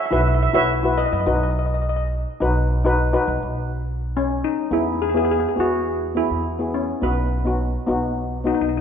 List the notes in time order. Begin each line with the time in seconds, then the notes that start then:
0.06 E5
0.11 B1 E4 F#4 B4 E5
0.21 E5
0.28 E5
0.35 E5
0.43 E5
0.53 B1 E4 F#4 B4 C#5 E5
0.83 E4 F#4 B4
0.98 B4 D#5
1.06 D#5
1.12 F#2 D#5
1.21 D#5
1.26 B1 D#4 F#4 B4 D#5
1.36 D#5
1.43 D#5
1.50 D#5
1.59 D#5
1.66 D#5
1.74 D#5
1.82 D#5
1.89 D#5
1.96 D#5
2.40 B1 D#4 F#4 B4
2.84 D#4 F#4 B4
3.13 D#4 F#4 B4
3.28 B1
3.43 B1
4.17 C#4
4.44 D#4
4.71 E2 B3 E4 G#4
5.02 G#4
5.10 G#4
5.14 B3 E4 G#4
5.25 G#4
5.31 G#4
5.40 G#4
5.49 G#4
5.56 E2 B3 E4 G#4
5.60 F#4
6.15 B3 E4 G#4
6.31 E2
6.59 B3 E4 G#4
6.74 C#4
7.01 B1 B3 D#4 F#4 B4
7.45 B3 D#4 F#4
7.87 B1 B3 D#4 F#4
8.44 B3 D#4 F#4
8.54 D#4
8.61 B1 D#4
8.69 D#4
8.77 D#4